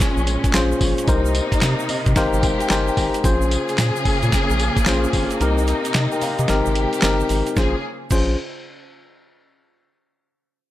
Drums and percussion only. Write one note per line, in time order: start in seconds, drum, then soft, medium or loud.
0.00 kick loud
0.00 snare medium
0.00 closed hi-hat medium
0.00 shaker medium
0.17 shaker medium
0.27 closed hi-hat medium
0.27 tambourine medium
0.44 kick loud
0.44 closed hi-hat medium
0.44 shaker soft
0.53 snare loud
0.53 clap loud
0.53 closed hi-hat medium
0.53 tambourine medium
0.53 shaker medium
0.72 shaker medium
0.81 kick medium
0.81 open hi-hat medium
0.81 tambourine medium
0.98 closed hi-hat medium
0.98 shaker soft
1.08 kick loud
1.08 closed hi-hat medium
1.08 tambourine medium
1.08 shaker medium
1.25 shaker medium
1.35 closed hi-hat medium
1.35 tambourine medium
1.52 kick medium
1.52 closed hi-hat medium
1.52 shaker medium
1.61 snare loud
1.61 clap medium
1.61 closed hi-hat medium
1.61 tambourine medium
1.61 shaker medium
1.79 shaker soft
1.89 open hi-hat medium
1.89 tambourine medium
2.06 kick loud
2.06 closed hi-hat medium
2.06 shaker medium
2.16 kick loud
2.16 snare medium
2.16 closed hi-hat medium
2.16 shaker medium
2.33 shaker medium
2.43 kick loud
2.43 closed hi-hat medium
2.43 tambourine medium
2.60 closed hi-hat medium
2.60 shaker medium
2.70 snare loud
2.70 clap medium
2.70 closed hi-hat medium
2.70 tambourine medium
2.70 shaker medium
2.88 shaker medium
2.97 kick medium
2.97 open hi-hat medium
2.97 tambourine medium
3.14 closed hi-hat medium
3.14 shaker soft
3.24 kick loud
3.24 closed hi-hat medium
3.24 tambourine medium
3.24 shaker medium
3.42 shaker soft
3.51 closed hi-hat medium
3.51 tambourine medium
3.69 closed hi-hat medium
3.69 shaker medium
3.78 snare loud
3.78 clap medium
3.78 closed hi-hat medium
3.78 tambourine medium
3.78 shaker medium
3.96 shaker medium
4.05 kick loud
4.05 open hi-hat medium
4.05 tambourine medium
4.23 closed hi-hat soft
4.23 shaker medium
4.32 kick loud
4.32 snare medium
4.32 closed hi-hat medium
4.32 shaker medium
4.50 shaker medium
4.59 closed hi-hat medium
4.59 tambourine medium
4.77 kick medium
4.77 closed hi-hat medium
4.77 shaker medium
4.86 snare loud
4.86 clap medium
4.86 closed hi-hat medium
4.86 tambourine medium
4.86 shaker medium
5.04 shaker medium
5.13 kick medium
5.13 open hi-hat medium
5.13 tambourine medium
5.31 closed hi-hat medium
5.31 shaker soft
5.41 closed hi-hat medium
5.41 shaker medium
5.58 shaker soft
5.67 closed hi-hat medium
5.67 shaker soft
5.85 closed hi-hat medium
5.85 shaker medium
5.94 snare loud
5.94 clap medium
5.94 closed hi-hat medium
5.94 shaker medium
6.12 shaker soft
6.21 open hi-hat medium
6.21 shaker medium
6.39 closed hi-hat soft
6.39 shaker medium
6.48 snare medium
6.48 closed hi-hat medium
6.48 shaker medium
6.66 shaker medium
6.75 closed hi-hat medium
6.93 closed hi-hat medium
6.93 shaker soft
7.02 snare loud
7.02 clap medium
7.02 closed hi-hat medium
7.02 shaker medium
7.20 shaker medium
7.29 open hi-hat medium
7.29 shaker soft
7.47 closed hi-hat medium
7.47 shaker medium
7.56 kick loud
7.56 snare medium
7.56 shaker medium
8.11 kick loud
8.11 crash medium
8.11 shaker medium